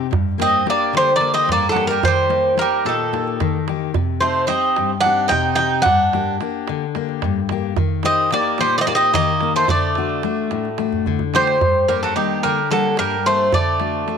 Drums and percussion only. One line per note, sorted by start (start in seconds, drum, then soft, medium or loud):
0.13 darbuka dum loud
0.40 darbuka tek medium
0.67 darbuka tek medium
0.95 darbuka tek medium
1.21 darbuka tek medium
1.36 darbuka tek soft
1.49 darbuka tek medium
1.49 darbuka dum medium
1.76 darbuka tek medium
2.03 darbuka dum loud
2.30 darbuka tek medium
2.58 darbuka tek medium
2.72 darbuka tek soft
2.86 darbuka tek medium
3.00 darbuka tek soft
3.14 darbuka tek medium
3.27 darbuka tek soft
3.40 darbuka tek medium
3.40 darbuka dum medium
3.68 darbuka tek medium
3.94 darbuka dum loud
4.22 darbuka tek medium
4.50 darbuka tek medium
4.76 darbuka tek medium
5.04 darbuka tek medium
5.18 darbuka tek soft
5.31 darbuka tek medium
5.31 darbuka dum medium
5.59 darbuka tek medium
5.86 darbuka dum loud
6.13 darbuka tek medium
6.41 darbuka tek medium
6.67 darbuka tek medium
6.95 darbuka tek medium
7.09 darbuka tek soft
7.22 darbuka tek medium
7.22 darbuka dum medium
7.49 darbuka tek medium
7.76 darbuka dum loud
8.03 darbuka tek medium
8.31 darbuka tek medium
8.58 darbuka tek medium
8.86 darbuka tek medium
9.00 darbuka tek soft
9.14 darbuka tek medium
9.14 darbuka dum medium
9.40 darbuka tek medium
9.68 darbuka dum medium
9.82 darbuka tek soft
9.95 darbuka tek medium
10.09 darbuka tek soft
10.23 darbuka tek medium
10.37 darbuka tek soft
10.51 darbuka tek medium
10.65 darbuka tek soft
10.78 darbuka tek medium
10.92 darbuka dum medium
11.06 darbuka dum medium
11.19 darbuka dum medium
11.34 darbuka tek medium
11.47 darbuka tek medium
11.61 darbuka dum loud
11.88 darbuka tek medium
12.02 darbuka tek soft
12.43 darbuka tek medium
12.71 darbuka tek medium
12.84 darbuka tek soft
12.97 darbuka tek medium
13.52 darbuka dum loud
13.80 darbuka tek medium
13.94 darbuka tek soft
14.08 darbuka tek medium